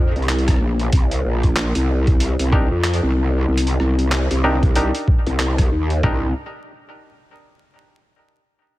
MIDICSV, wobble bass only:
0, 0, Header, 1, 2, 480
1, 0, Start_track
1, 0, Key_signature, -3, "minor"
1, 0, Tempo, 638298
1, 698, Time_signature, 4, 2, 24, 8
1, 6607, End_track
2, 0, Start_track
2, 0, Title_t, "Wobble bass"
2, 0, Program_c, 0, 39
2, 0, Note_on_c, 0, 41, 92
2, 98, Note_off_c, 0, 41, 0
2, 119, Note_on_c, 0, 36, 94
2, 442, Note_off_c, 0, 36, 0
2, 456, Note_on_c, 0, 34, 97
2, 681, Note_off_c, 0, 34, 0
2, 698, Note_on_c, 0, 36, 100
2, 922, Note_off_c, 0, 36, 0
2, 937, Note_on_c, 0, 34, 99
2, 1297, Note_off_c, 0, 34, 0
2, 1318, Note_on_c, 0, 36, 98
2, 1776, Note_off_c, 0, 36, 0
2, 1799, Note_on_c, 0, 36, 93
2, 2017, Note_off_c, 0, 36, 0
2, 2039, Note_on_c, 0, 41, 90
2, 2257, Note_off_c, 0, 41, 0
2, 2277, Note_on_c, 0, 36, 102
2, 2601, Note_off_c, 0, 36, 0
2, 2617, Note_on_c, 0, 36, 93
2, 2842, Note_off_c, 0, 36, 0
2, 2857, Note_on_c, 0, 36, 97
2, 3217, Note_off_c, 0, 36, 0
2, 3240, Note_on_c, 0, 36, 98
2, 3697, Note_off_c, 0, 36, 0
2, 3960, Note_on_c, 0, 36, 94
2, 4282, Note_off_c, 0, 36, 0
2, 4296, Note_on_c, 0, 39, 99
2, 4521, Note_off_c, 0, 39, 0
2, 6607, End_track
0, 0, End_of_file